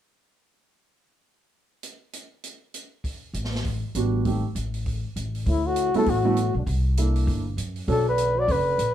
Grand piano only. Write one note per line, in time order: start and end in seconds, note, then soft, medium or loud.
3.95 4.25 G3 medium
3.95 4.26 B3 soft
3.95 4.26 D4 medium
3.95 4.26 F#4 medium
4.25 4.42 A3 soft
4.25 4.42 C4 soft
4.25 4.42 D#4 soft
4.25 4.42 G4 soft
5.95 6.06 A3 medium
5.95 6.06 B3 medium
5.95 6.06 E4 medium
5.95 6.06 F#4 medium
6.25 6.36 A3 medium
6.25 6.36 B3 medium
6.25 6.36 E4 medium
6.25 6.36 F#4 medium
6.98 7.42 A#3 soft
6.98 7.43 D4 soft
6.98 7.43 E4 soft
6.98 7.43 A4 medium
7.88 8.04 C#4 medium
7.88 8.04 D4 medium
7.88 8.05 F#4 medium
7.88 8.05 A4 medium